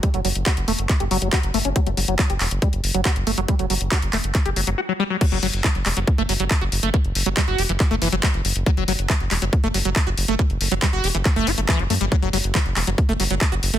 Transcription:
<<
  \new Staff \with { instrumentName = "Acid bass" } { \clef bass \time 4/4 \key e \dorian \tempo 4 = 139 g16 fis16 fis16 r16 fis'16 r16 a16 r8 g'16 fis16 fis16 fis'16 r16 a16 cis'16 | fis16 fis16 fis16 fis16 fis16 g'16 r8 g16 r8 fis16 fis'16 r16 a16 fis16 | g16 fis16 fis16 r16 fis'16 r16 a16 r8 g'16 fis16 fis16 fis'16 fis16 g16 fis16 | fis16 fis16 fis16 r16 e16 r16 g16 fis16 r16 a16 fis16 fis16 r16 fis'16 r16 a16 |
e16 r8 fis16 g16 fis'16 g'16 e16 r16 a16 e16 fis16 fis16 r8. | fis16 fis16 fis16 r16 e16 r16 g16 fis16 r16 a16 fis16 fis16 r16 fis'16 r16 a16 | e16 r8 fis16 g16 fis'16 g'16 e16 r16 a16 g'16 a16 e16 fis16 a16 g16 | fis16 fis16 fis16 r16 e16 r16 g16 fis16 r16 a16 fis16 fis16 r16 fis'16 r16 a16 | }
  \new Staff \with { instrumentName = "Analog synth bass" } { \clef bass \time 4/4 \key e \dorian r16 fis,,16 fis,,16 fis,,16 r16 fis,,16 e,,16 fis,,16 r16 fis,,16 fis,,16 fis,,16 r16 fis,,16 fis,,16 fis,,16 | r16 fis,,16 fis,,16 fis,,16 r16 fis,,16 e,,16 fis,,16 r16 fis,,16 fis,,16 fis,,16 r16 fis,,16 fis,,16 fis,,16 | r16 fis,,16 fis,,16 fis,,16 r16 fis,,16 e,,16 fis,,16 r16 fis,,16 fis,,16 fis,,16 r4 | r16 fis,,16 fis,,16 fis,,16 r16 fis,,16 e,,16 fis,,16 r16 fis,,16 fis,,16 fis,,16 r16 fis,,16 fis,,16 fis,,16 |
r16 fis,,16 fis,,16 fis,,16 r16 fis,,16 e,,16 fis,,16 r16 fis,,16 fis,,16 fis,,16 r16 fis,,16 fis,,16 fis,,16 | r16 fis,,16 fis,,16 fis,,16 r16 fis,,16 e,,16 fis,,16 r16 fis,,16 fis,,16 fis,,16 r16 fis,,16 fis,,16 fis,,16 | r16 fis,,16 fis,,16 fis,,16 r16 fis,,16 e,,16 fis,,16 r16 fis,,16 fis,,16 fis,,16 r16 fis,,16 fis,16 g,,16 | r16 fis,,16 fis,,16 fis,,16 r16 fis,,16 e,,16 fis,,16 r16 fis,,16 fis,,16 fis,,16 r16 fis,,16 fis,,16 fis,,16 | }
  \new DrumStaff \with { instrumentName = "Drums" } \drummode { \time 4/4 <hh bd>16 hh16 hho16 hh16 <hc hh bd>16 hh16 hho16 hh16 <hc hh bd>16 hh16 hho16 hh16 <hc hh bd>16 hh16 hho16 hh16 | <hh bd>16 hh16 hho16 hh16 <hc hh bd>16 hh16 <hc hho>16 hh16 <hh bd>16 hh16 hho16 hh16 <hc hh bd>16 hh16 hho16 hh16 | <hh bd>16 hh16 hho16 hh16 <hc hh bd>16 hh16 <hc hho>16 hh16 <hc hh bd>16 hh16 hho16 hh16 r4 | <cymc hh bd>16 hh16 hho16 hh16 <hc hh bd>16 hh16 <hc hho>16 hh16 <hh bd>16 hh16 hho16 hh16 <hc hh bd>16 hh16 hho16 hh16 |
<hh bd>16 hh16 hho16 hh16 <hc hh bd>16 hh16 hho16 hh16 <hc hh bd>16 hh16 hho16 hh16 <hc hh bd>16 hh16 hho16 hh16 | <hh bd>16 hh16 hho16 hh16 <hc hh bd>16 hh16 <hc hho>16 hh16 <hh bd>16 hh16 hho16 hh16 <hc hh bd>16 hh16 hho16 hh16 | <hh bd>16 hh16 hho16 hh16 <hc hh bd>16 hh16 hho16 hh16 <hc hh bd>16 hh16 hho16 hh16 <hc hh bd>16 hh16 hho16 hh16 | <hh bd>16 hh16 hho16 hh16 <hc hh bd>16 hh16 <hc hho>16 hh16 <hh bd>16 hh16 hho16 hh16 <hc hh bd>16 hh16 hho16 hh16 | }
>>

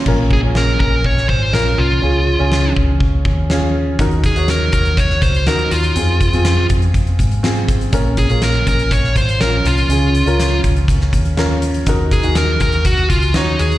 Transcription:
<<
  \new Staff \with { instrumentName = "Lead electric guitar" } { \time 4/4 \key bes \minor \tempo 4 = 122 r8 aes'8 bes'8 bes'8 des''8 c''8 bes'8 f'8~ | f'4. r2 r8 | r8 aes'8 bes'8 bes'8 des''8 c''8 bes'8 f'8~ | f'4. r2 r8 |
r8 aes'8 bes'8 bes'8 des''8 c''8 bes'8 f'8~ | f'4. r2 r8 | r8 aes'8 bes'8 bes'8 ges'8 f'8 ees'8 aes'8 | }
  \new Staff \with { instrumentName = "Upright piano" } { \time 4/4 \key bes \minor <des' f' bes'>8. <des' f' aes'>4.~ <des' f' aes'>16 r8 <des' f' bes'>4 | <des' f' aes'>8. <des' f' aes'>4.~ <des' f' aes'>16 r8 <des' f' aes'>4 | <ees' ges' bes'>8. <ees' ges' des''>4.~ <ees' ges' des''>16 r8 <ees' ges' bes'>4 | <c' f' aes'>8. <c' f' aes'>4.~ <c' f' aes'>16 r8 <c' f' aes'>4 |
<des' f' bes'>8. <des' f' bes'>4.~ <des' f' bes'>16 r8 <des' f' bes'>4 | <des' f' aes'>8. <des' f' bes'>4.~ <des' f' bes'>16 r8 <des' f' bes'>4 | <ees' ges' bes'>8. <ees' ges' aes'>4.~ <ees' ges' aes'>16 r8 <ees' ges' des''>4 | }
  \new Staff \with { instrumentName = "Upright piano" } { \clef bass \time 4/4 \key bes \minor bes,4. r2 r8 | des4. r2 r8 | ees4. r2 r8 | r1 |
bes,4. r2 r8 | des4. r2 r8 | ees4. r2 r8 | }
  \new Staff \with { instrumentName = "Fingered electric bass" } { \clef bass \time 4/4 \key bes \minor bes,,8. bes,,8. bes,,4 aes,,8 bes,,8 c,8 | des,8. des,8. des,4 ees,4. | ees,8. ees,8. ees,4 des,8 ees,8 ees,8 | f,8. f,8. f,4 aes,4. |
bes,,8. bes,,8. bes,,4 aes,,8 bes,,8 c,8 | des,8. des,8. des,4 ees,4. | ees,8. ees,8. ees,4 des,8 ees,8 ees,8 | }
  \new DrumStaff \with { instrumentName = "Drums" } \drummode { \time 4/4 <cymc bd>8 bd8 sn8 bd8 bd16 sn16 bd8 sn4 | r4 sn8 bd8 bd8 bd8 sn4 | <hh bd>16 hh16 <hh bd>16 hh16 <hh sn>8 <hh bd>16 hh16 <hh bd>16 sn16 <hh bd>16 hh16 <hh sn>16 hh16 hh16 hh16 | hh8 <hh bd>16 hh16 <hh sn>8 <hh bd>16 hh16 <hh bd>16 hh16 <hh bd>16 hh16 <hh sn>16 hh16 <hh bd>16 hh16 |
<hh bd>8 <hh bd>16 hh16 <hh sn>16 hh16 <hh bd>16 hh16 <hh bd>16 sn16 <hh bd>16 hh16 <hh sn>8 hh16 hh16 | hh8 hh16 hh16 <hh sn>8 <hh bd>16 hh16 <hh bd>16 sn16 <hh bd>16 hh16 <hh sn>8 hh16 hh16 | <hh bd>8 <hh bd>16 hh16 <hh sn>8 <hh bd>16 hh16 <hh bd>16 hh16 <hh bd>16 hh16 <hh sn>8 hh16 hh16 | }
>>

